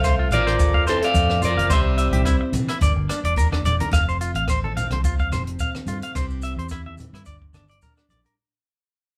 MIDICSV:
0, 0, Header, 1, 9, 480
1, 0, Start_track
1, 0, Key_signature, -1, "major"
1, 0, Tempo, 555556
1, 1473, Time_signature, 4, 2, 24, 8
1, 7925, End_track
2, 0, Start_track
2, 0, Title_t, "Clean electric guitar"
2, 0, Program_c, 0, 27
2, 0, Note_on_c, 0, 72, 80
2, 0, Note_on_c, 0, 77, 100
2, 248, Note_off_c, 0, 72, 0
2, 252, Note_off_c, 0, 77, 0
2, 288, Note_on_c, 0, 74, 101
2, 296, Note_on_c, 0, 70, 69
2, 728, Note_off_c, 0, 74, 0
2, 732, Note_off_c, 0, 70, 0
2, 771, Note_on_c, 0, 69, 64
2, 773, Note_on_c, 0, 72, 78
2, 885, Note_off_c, 0, 69, 0
2, 896, Note_off_c, 0, 72, 0
2, 902, Note_on_c, 0, 74, 75
2, 904, Note_on_c, 0, 77, 86
2, 1218, Note_off_c, 0, 77, 0
2, 1219, Note_off_c, 0, 74, 0
2, 1250, Note_on_c, 0, 74, 84
2, 1258, Note_on_c, 0, 70, 66
2, 1469, Note_off_c, 0, 70, 0
2, 1488, Note_off_c, 0, 74, 0
2, 1493, Note_on_c, 0, 76, 78
2, 1503, Note_on_c, 0, 72, 64
2, 2167, Note_off_c, 0, 76, 0
2, 2172, Note_off_c, 0, 72, 0
2, 7925, End_track
3, 0, Start_track
3, 0, Title_t, "Clean electric guitar"
3, 0, Program_c, 1, 27
3, 38, Note_on_c, 1, 72, 85
3, 120, Note_off_c, 1, 72, 0
3, 167, Note_on_c, 1, 65, 65
3, 236, Note_off_c, 1, 65, 0
3, 277, Note_on_c, 1, 77, 77
3, 359, Note_off_c, 1, 77, 0
3, 404, Note_on_c, 1, 72, 69
3, 474, Note_off_c, 1, 72, 0
3, 642, Note_on_c, 1, 77, 81
3, 712, Note_off_c, 1, 77, 0
3, 751, Note_on_c, 1, 72, 79
3, 834, Note_off_c, 1, 72, 0
3, 1228, Note_on_c, 1, 65, 67
3, 1312, Note_off_c, 1, 65, 0
3, 1361, Note_on_c, 1, 77, 75
3, 1431, Note_off_c, 1, 77, 0
3, 1468, Note_on_c, 1, 72, 88
3, 1552, Note_off_c, 1, 72, 0
3, 1708, Note_on_c, 1, 76, 70
3, 1791, Note_off_c, 1, 76, 0
3, 1838, Note_on_c, 1, 67, 73
3, 1909, Note_off_c, 1, 67, 0
3, 1950, Note_on_c, 1, 64, 75
3, 2033, Note_off_c, 1, 64, 0
3, 2324, Note_on_c, 1, 64, 64
3, 2393, Note_off_c, 1, 64, 0
3, 2439, Note_on_c, 1, 74, 78
3, 2519, Note_off_c, 1, 74, 0
3, 2675, Note_on_c, 1, 62, 67
3, 2756, Note_off_c, 1, 62, 0
3, 2809, Note_on_c, 1, 74, 78
3, 2876, Note_off_c, 1, 74, 0
3, 2917, Note_on_c, 1, 70, 80
3, 2998, Note_off_c, 1, 70, 0
3, 3044, Note_on_c, 1, 62, 61
3, 3113, Note_off_c, 1, 62, 0
3, 3158, Note_on_c, 1, 74, 75
3, 3238, Note_off_c, 1, 74, 0
3, 3288, Note_on_c, 1, 70, 72
3, 3356, Note_off_c, 1, 70, 0
3, 3395, Note_on_c, 1, 77, 92
3, 3476, Note_off_c, 1, 77, 0
3, 3531, Note_on_c, 1, 72, 66
3, 3598, Note_off_c, 1, 72, 0
3, 3637, Note_on_c, 1, 65, 64
3, 3718, Note_off_c, 1, 65, 0
3, 3764, Note_on_c, 1, 77, 69
3, 3833, Note_off_c, 1, 77, 0
3, 3885, Note_on_c, 1, 72, 75
3, 3963, Note_off_c, 1, 72, 0
3, 4010, Note_on_c, 1, 69, 68
3, 4077, Note_off_c, 1, 69, 0
3, 4119, Note_on_c, 1, 77, 74
3, 4199, Note_off_c, 1, 77, 0
3, 4254, Note_on_c, 1, 72, 62
3, 4320, Note_off_c, 1, 72, 0
3, 4361, Note_on_c, 1, 65, 73
3, 4441, Note_off_c, 1, 65, 0
3, 4491, Note_on_c, 1, 77, 71
3, 4558, Note_off_c, 1, 77, 0
3, 4601, Note_on_c, 1, 72, 75
3, 4681, Note_off_c, 1, 72, 0
3, 4843, Note_on_c, 1, 77, 74
3, 4922, Note_off_c, 1, 77, 0
3, 5080, Note_on_c, 1, 65, 65
3, 5160, Note_off_c, 1, 65, 0
3, 5213, Note_on_c, 1, 77, 62
3, 5280, Note_off_c, 1, 77, 0
3, 5319, Note_on_c, 1, 72, 73
3, 5400, Note_off_c, 1, 72, 0
3, 5558, Note_on_c, 1, 76, 69
3, 5640, Note_off_c, 1, 76, 0
3, 5691, Note_on_c, 1, 72, 65
3, 5759, Note_off_c, 1, 72, 0
3, 5801, Note_on_c, 1, 64, 69
3, 5881, Note_off_c, 1, 64, 0
3, 5929, Note_on_c, 1, 76, 64
3, 5998, Note_off_c, 1, 76, 0
3, 6169, Note_on_c, 1, 64, 57
3, 6238, Note_off_c, 1, 64, 0
3, 6274, Note_on_c, 1, 74, 70
3, 6357, Note_off_c, 1, 74, 0
3, 6517, Note_on_c, 1, 62, 64
3, 6599, Note_off_c, 1, 62, 0
3, 6649, Note_on_c, 1, 74, 65
3, 6718, Note_off_c, 1, 74, 0
3, 6762, Note_on_c, 1, 70, 72
3, 6843, Note_off_c, 1, 70, 0
3, 6888, Note_on_c, 1, 62, 54
3, 6958, Note_off_c, 1, 62, 0
3, 7000, Note_on_c, 1, 74, 68
3, 7081, Note_off_c, 1, 74, 0
3, 7135, Note_on_c, 1, 70, 59
3, 7202, Note_off_c, 1, 70, 0
3, 7925, End_track
4, 0, Start_track
4, 0, Title_t, "Steel-string acoustic guitar"
4, 0, Program_c, 2, 25
4, 0, Note_on_c, 2, 41, 72
4, 0, Note_on_c, 2, 60, 55
4, 267, Note_on_c, 2, 53, 64
4, 268, Note_off_c, 2, 60, 0
4, 279, Note_on_c, 2, 60, 55
4, 518, Note_on_c, 2, 69, 58
4, 750, Note_off_c, 2, 60, 0
4, 761, Note_on_c, 2, 60, 61
4, 987, Note_off_c, 2, 41, 0
4, 990, Note_on_c, 2, 45, 62
4, 1231, Note_off_c, 2, 45, 0
4, 1442, Note_off_c, 2, 53, 0
4, 1448, Note_off_c, 2, 69, 0
4, 1468, Note_off_c, 2, 60, 0
4, 1474, Note_on_c, 2, 48, 76
4, 1478, Note_on_c, 2, 60, 66
4, 1716, Note_on_c, 2, 64, 49
4, 1947, Note_off_c, 2, 60, 0
4, 1957, Note_on_c, 2, 60, 56
4, 2178, Note_off_c, 2, 64, 0
4, 2185, Note_on_c, 2, 52, 67
4, 2192, Note_off_c, 2, 48, 0
4, 2402, Note_off_c, 2, 52, 0
4, 2408, Note_off_c, 2, 60, 0
4, 2426, Note_on_c, 2, 43, 62
4, 2430, Note_on_c, 2, 58, 56
4, 2674, Note_on_c, 2, 62, 57
4, 2902, Note_off_c, 2, 43, 0
4, 2905, Note_on_c, 2, 45, 60
4, 3148, Note_off_c, 2, 45, 0
4, 3154, Note_on_c, 2, 43, 67
4, 3364, Note_off_c, 2, 58, 0
4, 3366, Note_off_c, 2, 62, 0
4, 3378, Note_off_c, 2, 43, 0
4, 3382, Note_on_c, 2, 41, 75
4, 3879, Note_on_c, 2, 60, 59
4, 4122, Note_on_c, 2, 53, 59
4, 4594, Note_on_c, 2, 48, 59
4, 5067, Note_on_c, 2, 57, 52
4, 5284, Note_off_c, 2, 57, 0
4, 5288, Note_off_c, 2, 48, 0
4, 5292, Note_off_c, 2, 53, 0
4, 5309, Note_off_c, 2, 41, 0
4, 5315, Note_off_c, 2, 60, 0
4, 5316, Note_on_c, 2, 48, 76
4, 5320, Note_on_c, 2, 52, 59
4, 5326, Note_on_c, 2, 60, 60
4, 5331, Note_on_c, 2, 64, 58
4, 5338, Note_on_c, 2, 67, 70
4, 5794, Note_off_c, 2, 64, 0
4, 5804, Note_on_c, 2, 64, 50
4, 6037, Note_off_c, 2, 48, 0
4, 6037, Note_off_c, 2, 52, 0
4, 6049, Note_on_c, 2, 52, 59
4, 6254, Note_off_c, 2, 64, 0
4, 6255, Note_off_c, 2, 60, 0
4, 6256, Note_off_c, 2, 52, 0
4, 6261, Note_off_c, 2, 67, 0
4, 6284, Note_on_c, 2, 43, 58
4, 6772, Note_on_c, 2, 62, 49
4, 7001, Note_on_c, 2, 55, 52
4, 7212, Note_off_c, 2, 55, 0
4, 7214, Note_off_c, 2, 43, 0
4, 7218, Note_off_c, 2, 62, 0
4, 7925, End_track
5, 0, Start_track
5, 0, Title_t, "Tenor saxophone"
5, 0, Program_c, 3, 66
5, 0, Note_on_c, 3, 57, 100
5, 249, Note_off_c, 3, 57, 0
5, 278, Note_on_c, 3, 53, 75
5, 722, Note_off_c, 3, 53, 0
5, 749, Note_on_c, 3, 52, 71
5, 872, Note_off_c, 3, 52, 0
5, 875, Note_on_c, 3, 57, 79
5, 1204, Note_off_c, 3, 57, 0
5, 1247, Note_on_c, 3, 53, 62
5, 1463, Note_off_c, 3, 53, 0
5, 1472, Note_on_c, 3, 55, 83
5, 2157, Note_off_c, 3, 55, 0
5, 7925, End_track
6, 0, Start_track
6, 0, Title_t, "Fingered electric bass"
6, 0, Program_c, 4, 33
6, 0, Note_on_c, 4, 36, 89
6, 243, Note_off_c, 4, 36, 0
6, 257, Note_on_c, 4, 33, 88
6, 637, Note_off_c, 4, 33, 0
6, 637, Note_on_c, 4, 29, 81
6, 863, Note_off_c, 4, 29, 0
6, 987, Note_on_c, 4, 41, 99
6, 1333, Note_off_c, 4, 41, 0
6, 1344, Note_on_c, 4, 29, 78
6, 1455, Note_off_c, 4, 29, 0
6, 1464, Note_on_c, 4, 36, 98
6, 1812, Note_off_c, 4, 36, 0
6, 1826, Note_on_c, 4, 36, 99
6, 2056, Note_off_c, 4, 36, 0
6, 2180, Note_on_c, 4, 48, 80
6, 2306, Note_off_c, 4, 48, 0
6, 2426, Note_on_c, 4, 31, 96
6, 2549, Note_off_c, 4, 31, 0
6, 2553, Note_on_c, 4, 31, 93
6, 2659, Note_off_c, 4, 31, 0
6, 2796, Note_on_c, 4, 28, 81
6, 3124, Note_off_c, 4, 28, 0
6, 3144, Note_on_c, 4, 28, 79
6, 3268, Note_off_c, 4, 28, 0
6, 3388, Note_on_c, 4, 29, 82
6, 3734, Note_off_c, 4, 29, 0
6, 3755, Note_on_c, 4, 33, 76
6, 4205, Note_off_c, 4, 33, 0
6, 4237, Note_on_c, 4, 36, 73
6, 4565, Note_off_c, 4, 36, 0
6, 4581, Note_on_c, 4, 29, 82
6, 4810, Note_off_c, 4, 29, 0
6, 5063, Note_on_c, 4, 43, 80
6, 5188, Note_off_c, 4, 43, 0
6, 5313, Note_on_c, 4, 36, 95
6, 5658, Note_off_c, 4, 36, 0
6, 5675, Note_on_c, 4, 40, 70
6, 6126, Note_off_c, 4, 40, 0
6, 6154, Note_on_c, 4, 43, 65
6, 6262, Note_off_c, 4, 43, 0
6, 6276, Note_on_c, 4, 31, 83
6, 6499, Note_off_c, 4, 31, 0
6, 6505, Note_on_c, 4, 31, 76
6, 6733, Note_off_c, 4, 31, 0
6, 6987, Note_on_c, 4, 34, 74
6, 7112, Note_off_c, 4, 34, 0
6, 7925, End_track
7, 0, Start_track
7, 0, Title_t, "Muted clean electric guitar strokes"
7, 509, Note_on_c, 9, 29, 68
7, 596, Note_off_c, 9, 29, 0
7, 2080, Note_on_c, 9, 29, 72
7, 2167, Note_off_c, 9, 29, 0
7, 7925, End_track
8, 0, Start_track
8, 0, Title_t, "Muted steel-string acoustic guitar strokes"
8, 2189, Note_on_c, 9, 29, 56
8, 2275, Note_off_c, 9, 29, 0
8, 7925, End_track
9, 0, Start_track
9, 0, Title_t, "Drums"
9, 34, Note_on_c, 9, 70, 76
9, 36, Note_on_c, 9, 36, 61
9, 36, Note_on_c, 9, 37, 66
9, 36, Note_on_c, 9, 42, 44
9, 120, Note_off_c, 9, 70, 0
9, 122, Note_off_c, 9, 36, 0
9, 123, Note_off_c, 9, 37, 0
9, 123, Note_off_c, 9, 42, 0
9, 273, Note_on_c, 9, 70, 69
9, 275, Note_on_c, 9, 63, 66
9, 275, Note_on_c, 9, 64, 69
9, 276, Note_on_c, 9, 42, 50
9, 359, Note_off_c, 9, 70, 0
9, 362, Note_off_c, 9, 63, 0
9, 362, Note_off_c, 9, 64, 0
9, 363, Note_off_c, 9, 42, 0
9, 408, Note_on_c, 9, 37, 65
9, 408, Note_on_c, 9, 42, 40
9, 494, Note_off_c, 9, 37, 0
9, 494, Note_off_c, 9, 42, 0
9, 511, Note_on_c, 9, 42, 45
9, 513, Note_on_c, 9, 36, 82
9, 514, Note_on_c, 9, 70, 90
9, 597, Note_off_c, 9, 42, 0
9, 599, Note_off_c, 9, 36, 0
9, 600, Note_off_c, 9, 70, 0
9, 642, Note_on_c, 9, 36, 63
9, 729, Note_off_c, 9, 36, 0
9, 753, Note_on_c, 9, 70, 74
9, 755, Note_on_c, 9, 37, 66
9, 755, Note_on_c, 9, 42, 46
9, 839, Note_off_c, 9, 70, 0
9, 841, Note_off_c, 9, 37, 0
9, 841, Note_off_c, 9, 42, 0
9, 884, Note_on_c, 9, 42, 47
9, 970, Note_off_c, 9, 42, 0
9, 991, Note_on_c, 9, 70, 102
9, 992, Note_on_c, 9, 36, 64
9, 993, Note_on_c, 9, 42, 48
9, 1077, Note_off_c, 9, 70, 0
9, 1078, Note_off_c, 9, 36, 0
9, 1079, Note_off_c, 9, 42, 0
9, 1122, Note_on_c, 9, 37, 66
9, 1208, Note_off_c, 9, 37, 0
9, 1227, Note_on_c, 9, 70, 69
9, 1233, Note_on_c, 9, 64, 65
9, 1237, Note_on_c, 9, 42, 49
9, 1314, Note_off_c, 9, 70, 0
9, 1319, Note_off_c, 9, 64, 0
9, 1323, Note_off_c, 9, 42, 0
9, 1367, Note_on_c, 9, 63, 69
9, 1372, Note_on_c, 9, 42, 43
9, 1453, Note_off_c, 9, 63, 0
9, 1459, Note_off_c, 9, 42, 0
9, 1470, Note_on_c, 9, 37, 64
9, 1470, Note_on_c, 9, 42, 50
9, 1472, Note_on_c, 9, 36, 90
9, 1472, Note_on_c, 9, 70, 98
9, 1556, Note_off_c, 9, 37, 0
9, 1556, Note_off_c, 9, 42, 0
9, 1558, Note_off_c, 9, 36, 0
9, 1558, Note_off_c, 9, 70, 0
9, 1708, Note_on_c, 9, 42, 47
9, 1715, Note_on_c, 9, 70, 76
9, 1794, Note_off_c, 9, 42, 0
9, 1802, Note_off_c, 9, 70, 0
9, 1837, Note_on_c, 9, 42, 49
9, 1842, Note_on_c, 9, 63, 64
9, 1842, Note_on_c, 9, 64, 59
9, 1923, Note_off_c, 9, 42, 0
9, 1928, Note_off_c, 9, 63, 0
9, 1928, Note_off_c, 9, 64, 0
9, 1947, Note_on_c, 9, 37, 59
9, 1947, Note_on_c, 9, 42, 47
9, 1950, Note_on_c, 9, 36, 64
9, 1958, Note_on_c, 9, 70, 86
9, 2033, Note_off_c, 9, 37, 0
9, 2033, Note_off_c, 9, 42, 0
9, 2037, Note_off_c, 9, 36, 0
9, 2044, Note_off_c, 9, 70, 0
9, 2186, Note_on_c, 9, 42, 51
9, 2191, Note_on_c, 9, 63, 63
9, 2191, Note_on_c, 9, 64, 70
9, 2202, Note_on_c, 9, 70, 70
9, 2272, Note_off_c, 9, 42, 0
9, 2278, Note_off_c, 9, 63, 0
9, 2278, Note_off_c, 9, 64, 0
9, 2288, Note_off_c, 9, 70, 0
9, 2320, Note_on_c, 9, 37, 65
9, 2320, Note_on_c, 9, 42, 46
9, 2407, Note_off_c, 9, 37, 0
9, 2407, Note_off_c, 9, 42, 0
9, 2428, Note_on_c, 9, 42, 45
9, 2432, Note_on_c, 9, 36, 89
9, 2442, Note_on_c, 9, 70, 78
9, 2514, Note_off_c, 9, 42, 0
9, 2519, Note_off_c, 9, 36, 0
9, 2528, Note_off_c, 9, 70, 0
9, 2673, Note_on_c, 9, 37, 66
9, 2673, Note_on_c, 9, 42, 51
9, 2687, Note_on_c, 9, 70, 67
9, 2760, Note_off_c, 9, 37, 0
9, 2760, Note_off_c, 9, 42, 0
9, 2774, Note_off_c, 9, 70, 0
9, 2803, Note_on_c, 9, 42, 47
9, 2890, Note_off_c, 9, 42, 0
9, 2914, Note_on_c, 9, 36, 67
9, 2914, Note_on_c, 9, 42, 49
9, 2928, Note_on_c, 9, 70, 81
9, 3001, Note_off_c, 9, 36, 0
9, 3001, Note_off_c, 9, 42, 0
9, 3014, Note_off_c, 9, 70, 0
9, 3043, Note_on_c, 9, 63, 62
9, 3048, Note_on_c, 9, 37, 63
9, 3130, Note_off_c, 9, 63, 0
9, 3134, Note_off_c, 9, 37, 0
9, 3159, Note_on_c, 9, 42, 50
9, 3159, Note_on_c, 9, 70, 64
9, 3162, Note_on_c, 9, 64, 73
9, 3245, Note_off_c, 9, 42, 0
9, 3246, Note_off_c, 9, 70, 0
9, 3248, Note_off_c, 9, 64, 0
9, 3284, Note_on_c, 9, 42, 50
9, 3292, Note_on_c, 9, 63, 78
9, 3370, Note_off_c, 9, 42, 0
9, 3378, Note_off_c, 9, 63, 0
9, 3394, Note_on_c, 9, 36, 88
9, 3394, Note_on_c, 9, 37, 66
9, 3394, Note_on_c, 9, 42, 46
9, 3403, Note_on_c, 9, 70, 90
9, 3480, Note_off_c, 9, 36, 0
9, 3480, Note_off_c, 9, 37, 0
9, 3480, Note_off_c, 9, 42, 0
9, 3490, Note_off_c, 9, 70, 0
9, 3532, Note_on_c, 9, 70, 29
9, 3619, Note_off_c, 9, 70, 0
9, 3634, Note_on_c, 9, 42, 44
9, 3641, Note_on_c, 9, 70, 75
9, 3721, Note_off_c, 9, 42, 0
9, 3727, Note_off_c, 9, 70, 0
9, 3757, Note_on_c, 9, 42, 43
9, 3844, Note_off_c, 9, 42, 0
9, 3868, Note_on_c, 9, 37, 62
9, 3868, Note_on_c, 9, 42, 43
9, 3874, Note_on_c, 9, 36, 60
9, 3881, Note_on_c, 9, 70, 95
9, 3954, Note_off_c, 9, 37, 0
9, 3954, Note_off_c, 9, 42, 0
9, 3960, Note_off_c, 9, 36, 0
9, 3967, Note_off_c, 9, 70, 0
9, 4018, Note_on_c, 9, 63, 76
9, 4105, Note_off_c, 9, 63, 0
9, 4118, Note_on_c, 9, 42, 42
9, 4126, Note_on_c, 9, 64, 75
9, 4127, Note_on_c, 9, 70, 80
9, 4204, Note_off_c, 9, 42, 0
9, 4212, Note_off_c, 9, 64, 0
9, 4213, Note_off_c, 9, 70, 0
9, 4240, Note_on_c, 9, 37, 62
9, 4240, Note_on_c, 9, 42, 41
9, 4258, Note_on_c, 9, 63, 80
9, 4326, Note_off_c, 9, 37, 0
9, 4326, Note_off_c, 9, 42, 0
9, 4345, Note_off_c, 9, 63, 0
9, 4353, Note_on_c, 9, 42, 41
9, 4356, Note_on_c, 9, 36, 74
9, 4359, Note_on_c, 9, 70, 99
9, 4439, Note_off_c, 9, 42, 0
9, 4443, Note_off_c, 9, 36, 0
9, 4446, Note_off_c, 9, 70, 0
9, 4488, Note_on_c, 9, 36, 66
9, 4488, Note_on_c, 9, 70, 27
9, 4574, Note_off_c, 9, 36, 0
9, 4574, Note_off_c, 9, 70, 0
9, 4600, Note_on_c, 9, 37, 66
9, 4600, Note_on_c, 9, 42, 45
9, 4600, Note_on_c, 9, 70, 77
9, 4606, Note_on_c, 9, 63, 67
9, 4606, Note_on_c, 9, 64, 63
9, 4686, Note_off_c, 9, 37, 0
9, 4686, Note_off_c, 9, 42, 0
9, 4686, Note_off_c, 9, 70, 0
9, 4692, Note_off_c, 9, 63, 0
9, 4692, Note_off_c, 9, 64, 0
9, 4726, Note_on_c, 9, 42, 42
9, 4812, Note_off_c, 9, 42, 0
9, 4831, Note_on_c, 9, 42, 39
9, 4833, Note_on_c, 9, 70, 108
9, 4834, Note_on_c, 9, 36, 59
9, 4845, Note_on_c, 9, 64, 61
9, 4918, Note_off_c, 9, 42, 0
9, 4920, Note_off_c, 9, 70, 0
9, 4921, Note_off_c, 9, 36, 0
9, 4931, Note_off_c, 9, 64, 0
9, 4966, Note_on_c, 9, 37, 61
9, 4968, Note_on_c, 9, 63, 64
9, 4974, Note_on_c, 9, 70, 27
9, 5053, Note_off_c, 9, 37, 0
9, 5054, Note_off_c, 9, 63, 0
9, 5060, Note_off_c, 9, 70, 0
9, 5073, Note_on_c, 9, 70, 88
9, 5075, Note_on_c, 9, 42, 45
9, 5079, Note_on_c, 9, 64, 73
9, 5160, Note_off_c, 9, 70, 0
9, 5162, Note_off_c, 9, 42, 0
9, 5165, Note_off_c, 9, 64, 0
9, 5202, Note_on_c, 9, 42, 44
9, 5213, Note_on_c, 9, 70, 29
9, 5289, Note_off_c, 9, 42, 0
9, 5299, Note_off_c, 9, 70, 0
9, 5315, Note_on_c, 9, 37, 62
9, 5315, Note_on_c, 9, 42, 45
9, 5317, Note_on_c, 9, 36, 74
9, 5323, Note_on_c, 9, 70, 93
9, 5401, Note_off_c, 9, 37, 0
9, 5401, Note_off_c, 9, 42, 0
9, 5403, Note_off_c, 9, 36, 0
9, 5409, Note_off_c, 9, 70, 0
9, 5445, Note_on_c, 9, 70, 32
9, 5531, Note_off_c, 9, 70, 0
9, 5545, Note_on_c, 9, 70, 77
9, 5565, Note_on_c, 9, 42, 45
9, 5631, Note_off_c, 9, 70, 0
9, 5651, Note_off_c, 9, 42, 0
9, 5693, Note_on_c, 9, 42, 39
9, 5779, Note_off_c, 9, 42, 0
9, 5780, Note_on_c, 9, 70, 97
9, 5799, Note_on_c, 9, 37, 57
9, 5799, Note_on_c, 9, 42, 43
9, 5800, Note_on_c, 9, 36, 50
9, 5866, Note_off_c, 9, 70, 0
9, 5885, Note_off_c, 9, 37, 0
9, 5885, Note_off_c, 9, 42, 0
9, 5886, Note_off_c, 9, 36, 0
9, 5928, Note_on_c, 9, 63, 73
9, 6014, Note_off_c, 9, 63, 0
9, 6029, Note_on_c, 9, 70, 78
9, 6039, Note_on_c, 9, 64, 69
9, 6048, Note_on_c, 9, 42, 44
9, 6115, Note_off_c, 9, 70, 0
9, 6126, Note_off_c, 9, 64, 0
9, 6134, Note_off_c, 9, 42, 0
9, 6167, Note_on_c, 9, 63, 71
9, 6175, Note_on_c, 9, 37, 60
9, 6175, Note_on_c, 9, 42, 49
9, 6253, Note_off_c, 9, 63, 0
9, 6261, Note_off_c, 9, 37, 0
9, 6261, Note_off_c, 9, 42, 0
9, 6268, Note_on_c, 9, 70, 93
9, 6280, Note_on_c, 9, 36, 76
9, 6284, Note_on_c, 9, 42, 47
9, 6355, Note_off_c, 9, 70, 0
9, 6366, Note_off_c, 9, 36, 0
9, 6370, Note_off_c, 9, 42, 0
9, 6409, Note_on_c, 9, 36, 55
9, 6495, Note_off_c, 9, 36, 0
9, 6513, Note_on_c, 9, 70, 70
9, 6516, Note_on_c, 9, 63, 64
9, 6516, Note_on_c, 9, 64, 63
9, 6521, Note_on_c, 9, 37, 61
9, 6521, Note_on_c, 9, 42, 44
9, 6600, Note_off_c, 9, 70, 0
9, 6603, Note_off_c, 9, 63, 0
9, 6603, Note_off_c, 9, 64, 0
9, 6607, Note_off_c, 9, 37, 0
9, 6607, Note_off_c, 9, 42, 0
9, 6637, Note_on_c, 9, 70, 25
9, 6659, Note_on_c, 9, 42, 44
9, 6723, Note_off_c, 9, 70, 0
9, 6746, Note_off_c, 9, 42, 0
9, 6754, Note_on_c, 9, 70, 97
9, 6762, Note_on_c, 9, 36, 59
9, 6767, Note_on_c, 9, 64, 64
9, 6768, Note_on_c, 9, 42, 45
9, 6840, Note_off_c, 9, 70, 0
9, 6848, Note_off_c, 9, 36, 0
9, 6854, Note_off_c, 9, 42, 0
9, 6854, Note_off_c, 9, 64, 0
9, 6886, Note_on_c, 9, 70, 24
9, 6893, Note_on_c, 9, 37, 52
9, 6972, Note_off_c, 9, 70, 0
9, 6979, Note_off_c, 9, 37, 0
9, 6996, Note_on_c, 9, 70, 72
9, 7002, Note_on_c, 9, 42, 45
9, 7007, Note_on_c, 9, 64, 71
9, 7083, Note_off_c, 9, 70, 0
9, 7089, Note_off_c, 9, 42, 0
9, 7093, Note_off_c, 9, 64, 0
9, 7122, Note_on_c, 9, 70, 24
9, 7134, Note_on_c, 9, 42, 43
9, 7209, Note_off_c, 9, 70, 0
9, 7220, Note_off_c, 9, 42, 0
9, 7925, End_track
0, 0, End_of_file